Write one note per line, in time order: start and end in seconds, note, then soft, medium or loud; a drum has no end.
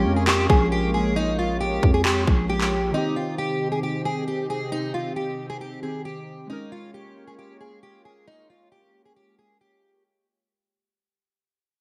0.00 2.89 G#3 medium
0.00 2.90 G#3 medium
0.00 2.90 A#3 medium
0.00 2.90 C#4 medium
0.00 2.90 F4 medium
0.00 0.14 G4 medium
0.00 2.91 A#4 medium
0.00 2.90 C#5 medium
0.05 0.47 F2 loud
0.16 0.26 G#4 medium
0.27 0.48 G4 medium
0.27 clap loud
0.49 1.79 A#1 loud
0.49 0.70 G#4 medium
0.49 kick loud
0.72 0.92 G4 medium
0.94 1.14 G#4 medium
1.16 1.36 D#4 loud
1.39 1.59 F4 medium
1.61 1.92 G4 medium
1.83 2.26 F2 loud
1.83 kick medium
1.94 2.04 G#4 medium
2.05 2.25 G4 medium
2.05 clap loud
2.27 2.91 A#1 loud
2.27 2.48 G#4 medium
2.27 kick medium
2.49 2.91 G4 medium
2.61 clap medium
2.91 6.46 C3 medium
2.91 5.78 D#3 medium
2.91 6.46 C4 medium
2.91 5.79 C4 medium
2.91 3.14 D#4 loud
2.91 6.46 D#4 medium
2.91 6.46 G4 medium
2.97 5.80 G4 medium
3.16 3.36 F4 medium
3.38 3.70 G4 medium
3.72 3.82 G#4 medium
3.83 4.03 G4 medium
4.05 4.25 G#4 medium
4.28 4.48 G4 medium
4.50 4.70 G#4 medium
4.72 4.92 D#4 loud
4.94 5.14 F4 medium
5.16 5.48 G4 medium
5.50 5.60 G#4 medium
5.61 5.81 G4 medium
5.82 6.49 D#3 medium
5.82 6.50 C4 soft
5.82 6.50 G4 medium
5.82 6.03 G#4 medium
6.05 6.47 G4 medium
6.47 10.00 G#3 medium
6.47 10.02 G#3 medium
6.47 10.02 A#3 medium
6.47 10.01 C#4 medium
6.47 6.70 D#4 medium
6.47 10.02 F4 medium
6.47 10.02 C#5 medium
6.52 10.03 A#4 medium
6.72 6.92 F4 medium
6.94 7.25 G4 medium
7.27 7.38 G#4 medium
7.39 7.59 G4 medium
7.61 7.81 G#4 medium
7.83 8.03 G4 medium
8.05 8.25 G#4 medium
8.28 8.48 D#4 loud
8.50 8.70 F4 medium
8.72 9.03 G4 medium
9.05 9.15 G#4 medium
9.16 9.37 G4 medium
9.39 9.59 G#4 medium
9.61 10.03 G4 medium